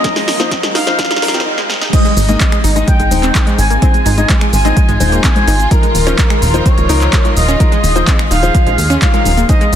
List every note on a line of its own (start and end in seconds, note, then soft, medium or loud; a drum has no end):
0.00 1.43 D#2 medium
0.00 1.43 D#3 medium
0.00 1.43 F4 medium
0.00 1.43 A#4 medium
0.00 0.66 D#5 loud
0.00 riser medium
0.04 0.14 F3 loud
0.04 0.07 G#3 medium
0.04 0.14 D#4 medium
0.04 0.14 A#4 loud
0.04 kick loud
0.04 snare loud
0.04 closed hi-hat medium
0.16 0.19 G#3 loud
0.16 snare medium
0.16 open hi-hat medium
0.28 snare medium
0.28 open hi-hat loud
0.40 0.50 F3 medium
0.40 0.45 A#3 medium
0.40 0.50 D#4 medium
0.40 0.50 C5 medium
0.40 snare medium
0.40 closed hi-hat soft
0.51 0.56 C4 loud
0.51 kick loud
0.51 snare loud
0.51 closed hi-hat medium
0.63 0.68 G#3 medium
0.63 snare medium
0.63 closed hi-hat soft
0.75 0.78 D#4 medium
0.75 1.37 F5 loud
0.75 snare loud
0.75 open hi-hat loud
0.87 1.19 F3 medium
0.87 1.20 D#4 medium
0.87 1.20 C5 loud
0.87 snare medium
0.87 closed hi-hat soft
0.99 1.02 G#3 medium
0.99 kick loud
0.99 snare loud
0.99 closed hi-hat medium
1.05 snare medium
1.11 1.16 G#3 medium
1.11 snare medium
1.11 closed hi-hat soft
1.16 snare medium
1.22 1.46 F3 medium
1.22 1.46 D#4 medium
1.22 1.46 A#4 loud
1.22 snare loud
1.22 open hi-hat loud
1.28 snare medium
1.34 1.39 C4 loud
1.34 snare medium
1.34 closed hi-hat soft
1.40 snare medium
1.46 1.49 D#4 medium
1.58 1.63 G#3 loud
1.58 snare medium
1.70 snare medium
1.81 1.89 D#4 medium
1.81 snare medium
1.93 2.03 G#2 loud
1.93 5.67 G#3 medium
1.93 1.96 G#3 medium
1.93 2.03 G#3 medium
1.93 5.67 C4 medium
1.93 3.80 D#4 medium
1.93 2.03 D#4 medium
1.93 2.03 C5 loud
1.93 2.78 D#5 loud
1.93 kick loud
1.93 closed hi-hat loud
1.93 crash loud
1.93 cabasa soft
2.05 2.08 G#3 loud
2.05 closed hi-hat soft
2.05 cabasa soft
2.17 2.37 G#1 loud
2.17 open hi-hat loud
2.17 cabasa medium
2.29 2.39 G#2 medium
2.29 2.39 G#3 medium
2.29 2.34 A#3 medium
2.29 2.39 D#4 medium
2.29 2.39 D#5 medium
2.29 closed hi-hat soft
2.29 cabasa soft
2.40 2.45 C4 loud
2.40 kick loud
2.40 clap loud
2.40 closed hi-hat loud
2.40 cabasa soft
2.52 2.57 G#3 medium
2.52 finger snap medium
2.52 closed hi-hat soft
2.52 cabasa soft
2.64 2.84 G#1 medium
2.64 2.67 D#4 medium
2.64 open hi-hat loud
2.64 cabasa medium
2.76 3.08 G#2 medium
2.76 3.08 G#3 medium
2.76 3.08 D#4 medium
2.76 3.08 D#5 loud
2.76 closed hi-hat soft
2.76 cabasa soft
2.88 2.91 G#3 medium
2.88 3.49 G5 loud
2.88 kick loud
2.88 closed hi-hat loud
2.88 cabasa soft
3.00 3.09 G#1 medium
3.00 3.05 G#3 medium
3.00 closed hi-hat soft
3.00 cabasa soft
3.11 3.31 D#1 loud
3.11 3.44 G#2 loud
3.11 3.44 G#3 medium
3.11 3.44 D#4 medium
3.11 3.44 C5 loud
3.11 open hi-hat loud
3.11 cabasa medium
3.23 3.28 C4 loud
3.23 clap soft
3.23 closed hi-hat soft
3.23 cabasa soft
3.35 3.38 G#3 medium
3.35 kick loud
3.35 clap loud
3.35 closed hi-hat loud
3.35 cabasa soft
3.47 3.63 G#2 medium
3.47 3.63 G#3 medium
3.47 3.50 G#3 loud
3.47 3.63 D#4 medium
3.47 3.63 C5 medium
3.47 closed hi-hat soft
3.47 cabasa soft
3.59 3.78 G#1 loud
3.59 4.44 G#5 loud
3.59 open hi-hat loud
3.59 cabasa medium
3.70 3.75 A#3 medium
3.70 closed hi-hat soft
3.70 cabasa soft
3.82 3.92 G#2 loud
3.82 3.92 G#3 medium
3.82 3.87 C4 loud
3.82 3.92 D#4 medium
3.82 9.45 F4 medium
3.82 3.92 C5 loud
3.82 kick loud
3.82 closed hi-hat loud
3.82 cabasa soft
3.94 3.99 G#3 medium
3.94 closed hi-hat soft
3.94 cabasa soft
4.06 4.26 G#1 loud
4.06 4.09 D#4 medium
4.06 open hi-hat loud
4.06 cabasa medium
4.18 4.28 G#2 medium
4.18 4.28 G#3 medium
4.18 4.28 D#4 medium
4.18 4.28 D#5 loud
4.18 closed hi-hat soft
4.18 cabasa soft
4.29 4.32 G#3 medium
4.29 kick loud
4.29 clap loud
4.29 closed hi-hat loud
4.29 cabasa soft
4.41 4.46 G#3 medium
4.41 finger snap medium
4.41 closed hi-hat soft
4.41 cabasa soft
4.53 4.73 G#1 medium
4.53 5.15 G#5 loud
4.53 open hi-hat loud
4.53 cabasa medium
4.65 4.97 G#2 medium
4.65 4.97 G#3 medium
4.65 4.70 C4 loud
4.65 4.97 D#4 medium
4.65 4.97 D#5 loud
4.65 closed hi-hat soft
4.65 cabasa soft
4.77 4.80 G#3 medium
4.77 kick loud
4.77 closed hi-hat loud
4.77 cabasa soft
4.89 4.98 G#1 medium
4.89 4.92 G#3 loud
4.89 closed hi-hat soft
4.89 cabasa soft
5.00 5.20 D#1 loud
5.00 5.33 G#2 loud
5.00 5.33 G#3 medium
5.00 5.33 D#4 medium
5.00 5.33 C5 loud
5.00 open hi-hat loud
5.00 cabasa medium
5.12 5.17 A#3 medium
5.12 closed hi-hat soft
5.12 cabasa soft
5.24 5.29 C4 loud
5.24 5.66 G#5 loud
5.24 kick loud
5.24 clap loud
5.24 closed hi-hat medium
5.24 cabasa soft
5.36 5.52 G#2 medium
5.36 5.52 G#3 medium
5.36 5.41 G#3 medium
5.36 5.52 D#4 medium
5.36 5.52 C5 medium
5.36 closed hi-hat soft
5.36 cabasa soft
5.47 5.67 G#1 loud
5.47 5.51 D#4 medium
5.47 open hi-hat loud
5.47 cabasa medium
5.59 closed hi-hat soft
5.59 cabasa soft
5.71 9.45 D#3 medium
5.71 5.81 F3 loud
5.71 5.74 G#3 medium
5.71 9.45 D#4 medium
5.71 5.81 D#4 medium
5.71 7.58 A#4 medium
5.71 5.81 A#4 loud
5.71 6.67 A#4 loud
5.71 kick loud
5.71 closed hi-hat medium
5.71 cabasa soft
5.83 5.88 G#3 medium
5.83 closed hi-hat soft
5.83 cabasa soft
5.95 6.15 D#1 loud
5.95 open hi-hat loud
5.95 cabasa medium
6.07 6.17 F3 medium
6.07 6.12 C#4 loud
6.07 6.17 D#4 medium
6.07 6.17 C5 loud
6.07 closed hi-hat soft
6.07 cabasa soft
6.18 6.21 G#3 medium
6.18 kick loud
6.18 clap loud
6.18 closed hi-hat loud
6.18 cabasa soft
6.30 6.33 G#3 loud
6.30 finger snap medium
6.30 closed hi-hat soft
6.30 cabasa soft
6.42 6.62 D#1 medium
6.42 open hi-hat loud
6.42 cabasa medium
6.54 6.86 F3 loud
6.54 6.59 A#3 medium
6.54 6.86 D#4 medium
6.54 6.86 C5 loud
6.54 closed hi-hat soft
6.54 cabasa soft
6.66 6.71 C4 loud
6.66 7.27 C#5 loud
6.66 kick loud
6.66 closed hi-hat medium
6.66 cabasa soft
6.78 6.87 D#1 medium
6.78 6.83 G#3 medium
6.78 closed hi-hat soft
6.78 cabasa soft
6.89 7.09 C#2 loud
6.89 7.22 F3 medium
6.89 6.92 D#4 medium
6.89 7.22 D#4 medium
6.89 7.22 A#4 loud
6.89 open hi-hat loud
6.89 cabasa medium
7.01 clap soft
7.01 closed hi-hat soft
7.01 cabasa soft
7.13 7.16 G#3 medium
7.13 kick loud
7.13 clap loud
7.13 closed hi-hat medium
7.13 cabasa soft
7.25 7.41 F3 medium
7.25 7.30 G#3 medium
7.25 7.41 D#4 medium
7.25 7.41 A#4 medium
7.25 closed hi-hat soft
7.25 cabasa soft
7.36 7.56 D#1 loud
7.36 8.22 D#5 loud
7.36 open hi-hat loud
7.36 cabasa medium
7.48 7.53 C#4 loud
7.48 closed hi-hat soft
7.48 cabasa soft
7.60 7.70 F3 loud
7.60 7.63 G#3 medium
7.60 7.70 D#4 medium
7.60 9.47 G#4 medium
7.60 7.70 A#4 loud
7.60 kick loud
7.60 closed hi-hat medium
7.60 cabasa soft
7.72 7.75 G#3 loud
7.72 closed hi-hat soft
7.72 cabasa soft
7.84 8.04 D#1 loud
7.84 open hi-hat loud
7.84 cabasa medium
7.96 8.06 F3 medium
7.96 8.01 A#3 medium
7.96 8.06 D#4 medium
7.96 8.06 C5 loud
7.96 closed hi-hat soft
7.96 cabasa soft
8.07 8.12 C4 loud
8.07 kick loud
8.07 clap loud
8.07 closed hi-hat medium
8.07 cabasa soft
8.19 8.24 G#3 medium
8.19 finger snap medium
8.19 closed hi-hat soft
8.19 cabasa soft
8.31 8.51 D#1 medium
8.31 8.34 D#4 medium
8.31 8.93 F5 loud
8.31 open hi-hat loud
8.31 cabasa medium
8.43 8.75 F3 loud
8.43 8.75 D#4 medium
8.43 8.75 C5 loud
8.43 closed hi-hat soft
8.43 cabasa soft
8.55 8.58 G#3 medium
8.55 kick loud
8.55 closed hi-hat medium
8.55 cabasa soft
8.66 8.76 A#1 loud
8.66 8.71 G#3 medium
8.66 closed hi-hat soft
8.66 cabasa soft
8.78 8.98 D#2 medium
8.78 open hi-hat loud
8.78 cabasa medium
8.90 8.95 C#4 loud
8.90 closed hi-hat soft
8.90 cabasa soft
9.02 9.12 F3 medium
9.02 9.05 G#3 medium
9.02 9.12 D#4 medium
9.02 9.12 C#5 medium
9.02 9.44 F5 medium
9.02 kick loud
9.02 clap loud
9.02 closed hi-hat medium
9.02 cabasa soft
9.14 9.30 F3 medium
9.14 9.17 G#3 loud
9.14 9.30 D#4 medium
9.14 9.30 A#4 medium
9.14 closed hi-hat soft
9.14 cabasa soft
9.25 9.45 D#1 medium
9.25 open hi-hat loud
9.25 cabasa medium
9.37 9.42 A#3 medium
9.37 closed hi-hat soft
9.37 cabasa soft
9.49 9.59 G#2 loud
9.49 9.52 G#3 medium
9.49 9.59 G#3 medium
9.49 9.76 G#3 medium
9.49 9.76 C4 medium
9.49 9.59 D#4 medium
9.49 9.76 D#4 medium
9.49 9.59 C5 loud
9.49 9.76 D#5 loud
9.49 kick loud
9.49 closed hi-hat medium
9.49 cabasa soft
9.61 9.64 G#3 loud
9.61 closed hi-hat soft
9.61 cabasa soft